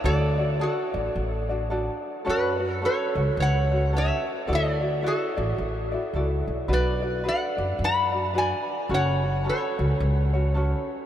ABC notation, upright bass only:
X:1
M:4/4
L:1/8
Q:"Swing" 1/4=108
K:Dlyd
V:1 name="Upright bass" clef=bass
D,,3 A,,, A,,,4 | F,,3 C,, C,,4 | D,,3 A,,, A,,,2 C,, B,,, | B,,,3 F,, F,,4 |
F,,,3 C,, C,,4 |]